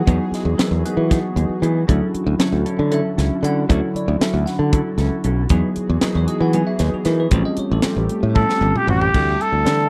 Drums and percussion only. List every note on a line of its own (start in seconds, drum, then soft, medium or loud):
0.07 kick medium
0.07 closed hi-hat medium
0.34 snare soft
0.34 closed hi-hat medium
0.59 snare loud
0.59 closed hi-hat medium
0.86 closed hi-hat medium
1.11 kick medium
1.11 snare soft
1.11 closed hi-hat medium
1.37 closed hi-hat medium
1.63 closed hi-hat medium
1.89 kick medium
1.89 closed hi-hat medium
2.15 closed hi-hat medium
2.40 snare loud
2.40 closed hi-hat medium
2.66 closed hi-hat medium
2.92 closed hi-hat medium
3.19 snare soft
3.19 closed hi-hat medium
3.44 closed hi-hat medium
3.70 kick loud
3.70 closed hi-hat medium
3.96 closed hi-hat soft
4.21 snare loud
4.21 closed hi-hat medium
4.47 snare soft
4.47 closed hi-hat medium
4.73 kick loud
4.73 closed hi-hat medium
4.98 snare soft
4.98 closed hi-hat medium
5.24 closed hi-hat medium
5.49 kick loud
5.49 closed hi-hat medium
5.76 closed hi-hat medium
6.01 snare loud
6.01 closed hi-hat medium
6.28 closed hi-hat medium
6.53 closed hi-hat medium
6.79 snare soft
6.79 closed hi-hat medium
7.05 snare soft
7.05 closed hi-hat medium
7.31 kick loud
7.31 closed hi-hat medium
7.57 closed hi-hat medium
7.82 snare loud
7.82 closed hi-hat medium
8.09 closed hi-hat medium
8.35 kick medium
8.35 high tom medium
8.49 snare medium
8.62 mid tom medium
8.76 mid tom medium
8.88 floor tom medium
9.01 floor tom medium
9.14 kick medium
9.14 crash medium
9.41 closed hi-hat soft
9.66 snare medium
9.66 closed hi-hat medium